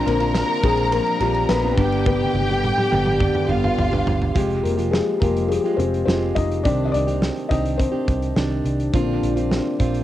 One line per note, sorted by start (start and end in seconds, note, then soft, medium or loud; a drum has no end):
0.00 1.74 C3 medium
0.00 0.21 F3 medium
0.00 1.76 A#3 medium
0.00 0.21 C4 medium
0.00 0.20 D4 medium
0.00 1.74 D4 medium
0.00 0.19 F4 medium
0.00 1.73 A#4 medium
0.00 1.73 A#5 loud
0.06 0.42 A#1 loud
0.06 1.74 D3 medium
0.06 0.60 A#3 medium
0.06 1.75 C4 medium
0.06 0.65 A#4 loud
0.06 ride medium
0.20 0.63 C4 soft
0.20 0.63 D4 medium
0.20 0.63 F4 medium
0.20 ride medium
0.35 snare loud
0.35 ride medium
0.63 0.99 A#1 loud
0.63 1.21 A#2 medium
0.63 1.19 F3 loud
0.63 0.71 G#3 medium
0.63 1.20 C4 medium
0.63 1.21 D4 medium
0.63 1.21 F4 medium
0.63 0.70 G#4 medium
0.63 kick loud
0.63 ride medium
0.77 ride soft
0.92 1.19 A#3 medium
0.92 1.21 A#4 loud
0.92 ride medium
1.06 ride soft
1.20 1.44 A#1 loud
1.20 1.63 F3 medium
1.20 1.48 G3 medium
1.20 1.64 C4 medium
1.20 1.63 D4 medium
1.20 1.62 F4 medium
1.20 1.50 G4 medium
1.20 ride medium
1.34 ride soft
1.49 1.73 A#1 loud
1.49 1.76 B3 medium
1.49 2.05 B4 loud
1.49 snare loud
1.49 ride medium
1.63 1.78 C4 medium
1.63 1.78 D4 medium
1.63 1.78 F4 medium
1.77 2.25 G1 loud
1.77 2.49 G2 medium
1.77 2.59 D3 medium
1.77 2.49 D3 medium
1.77 4.18 D3 medium
1.77 2.60 G3 medium
1.77 2.52 G3 medium
1.77 2.05 B3 medium
1.77 4.18 B3 medium
1.77 2.50 B3 medium
1.77 2.49 D4 medium
1.77 3.46 G4 medium
1.77 4.18 G4 medium
1.77 2.49 G4 medium
1.77 3.46 G5 medium
1.77 kick medium
1.77 ride medium
1.92 ride soft
2.06 3.74 B3 medium
2.06 3.74 B4 loud
2.06 kick loud
2.06 high tom medium
2.21 high tom medium
2.34 2.70 G1 loud
2.34 high tom medium
2.50 2.91 G3 soft
2.50 2.91 B3 medium
2.50 2.92 D4 medium
2.50 2.92 G4 medium
2.50 high tom medium
2.64 mid tom medium
2.78 mid tom medium
2.92 3.28 G1 loud
2.92 3.49 G2 medium
2.92 3.50 D3 medium
2.92 3.48 G3 medium
2.92 3.48 B3 medium
2.92 3.49 D4 loud
2.92 3.50 G4 medium
2.92 mid tom medium
3.06 mid tom medium
3.20 kick medium
3.20 mid tom medium
3.35 mid tom medium
3.49 3.73 G1 loud
3.49 3.92 G3 medium
3.49 3.92 B3 medium
3.49 3.91 D4 medium
3.49 4.34 F4 medium
3.49 3.90 G4 medium
3.49 4.33 F5 medium
3.49 mid tom medium
3.64 mid tom medium
3.78 4.02 G1 loud
3.78 floor tom loud
3.91 4.35 G3 medium
3.91 4.35 B3 medium
3.91 4.35 D4 medium
3.91 4.35 G4 medium
3.91 floor tom medium
4.06 4.30 G1 loud
4.06 floor tom loud
4.22 floor tom medium
4.34 4.59 F1 loud
4.34 4.78 F2 medium
4.34 4.78 C3 medium
4.34 4.78 F3 medium
4.34 6.62 F3 medium
4.34 6.62 G#3 medium
4.34 4.91 G#3 soft
4.34 4.77 G#3 medium
4.34 4.76 F4 medium
4.34 5.48 F4 medium
4.34 6.60 G4 medium
4.34 6.62 G4 medium
4.34 4.76 G4 medium
4.34 kick loud
4.34 closed hi-hat medium
4.50 closed hi-hat soft
4.63 4.99 F1 loud
4.63 4.71 A#3 medium
4.63 4.70 A#4 medium
4.63 closed hi-hat medium
4.77 5.20 F3 soft
4.77 5.21 G#3 medium
4.77 5.21 F4 medium
4.77 5.21 G4 medium
4.77 closed hi-hat medium
4.91 5.19 G#3 medium
4.91 5.22 G#4 medium
4.91 snare loud
5.20 5.57 F1 medium
5.20 5.64 F3 medium
5.20 5.64 G#3 medium
5.20 5.48 A#3 medium
5.20 5.64 F4 medium
5.20 5.63 G4 medium
5.20 5.50 A#4 medium
5.20 kick medium
5.20 closed hi-hat medium
5.36 closed hi-hat soft
5.48 5.75 G3 soft
5.48 5.77 G#3 medium
5.48 5.76 F4 medium
5.48 5.79 G#4 medium
5.48 closed hi-hat medium
5.64 6.06 F3 soft
5.64 6.06 G#3 soft
5.64 6.07 F4 medium
5.64 6.07 G4 medium
5.64 closed hi-hat soft
5.77 6.02 F1 medium
5.77 6.05 C4 medium
5.77 6.04 C5 medium
5.77 closed hi-hat medium
5.94 closed hi-hat soft
6.05 6.31 F1 medium
6.05 6.64 F3 medium
6.05 6.64 G#3 medium
6.05 6.34 C4 medium
6.05 6.65 F4 medium
6.05 6.65 G4 medium
6.05 6.36 C5 medium
6.05 snare loud
6.35 6.67 F1 medium
6.35 6.64 D#4 medium
6.35 6.62 D#5 medium
6.35 kick medium
6.35 closed hi-hat medium
6.51 closed hi-hat soft
6.63 6.89 C2 loud
6.63 7.08 C3 medium
6.63 10.04 C3 medium
6.63 8.90 D#3 soft
6.63 7.08 D#3 medium
6.63 8.92 D#3 medium
6.63 7.08 C4 medium
6.63 7.77 C4 soft
6.63 6.85 D4 medium
6.63 7.07 D4 medium
6.63 10.04 D4 medium
6.63 7.06 G4 medium
6.63 6.86 D5 loud
6.63 kick loud
6.63 closed hi-hat medium
6.85 6.93 D#5 medium
6.92 7.29 C2 medium
6.92 7.47 D4 medium
6.92 7.52 D5 loud
6.92 closed hi-hat medium
7.07 7.50 C4 soft
7.07 7.51 D4 medium
7.07 7.50 G4 medium
7.07 closed hi-hat medium
7.22 snare loud
7.37 closed hi-hat soft
7.49 7.86 C2 loud
7.49 7.94 D#3 medium
7.49 7.93 C4 medium
7.49 7.92 D4 medium
7.49 7.77 D#4 medium
7.49 7.91 G4 medium
7.49 7.79 D#5 medium
7.49 kick medium
7.49 closed hi-hat medium
7.65 closed hi-hat medium
7.77 8.61 C4 medium
7.77 8.61 C5 medium
7.77 kick medium
7.77 closed hi-hat medium
7.92 8.35 C4 soft
7.92 8.36 D4 medium
7.92 8.36 G4 medium
8.08 8.32 C2 medium
8.08 kick medium
8.08 closed hi-hat medium
8.22 closed hi-hat soft
8.36 8.60 C2 loud
8.36 8.94 D#3 medium
8.36 8.93 C4 medium
8.36 8.94 D4 medium
8.36 8.95 G4 medium
8.36 snare loud
8.65 8.89 C2 medium
8.65 closed hi-hat medium
8.80 closed hi-hat soft
8.93 9.17 A#1 loud
8.93 9.37 A#2 medium
8.93 9.32 D3 medium
8.93 9.37 F3 medium
8.93 9.32 A#3 soft
8.93 10.04 A#3 medium
8.93 9.37 C4 medium
8.93 9.32 C4 medium
8.93 9.36 D4 loud
8.93 9.35 F4 loud
8.93 kick loud
8.93 closed hi-hat medium
9.23 9.58 A#1 medium
9.23 closed hi-hat medium
9.36 9.79 C4 soft
9.36 9.79 D4 medium
9.36 9.79 F4 medium
9.36 closed hi-hat medium
9.51 snare loud
9.79 10.04 A#1 medium
9.79 10.04 F3 medium
9.79 10.04 C4 medium
9.79 10.04 D4 medium
9.79 10.04 F4 medium
9.79 kick medium
9.79 closed hi-hat medium
9.94 closed hi-hat soft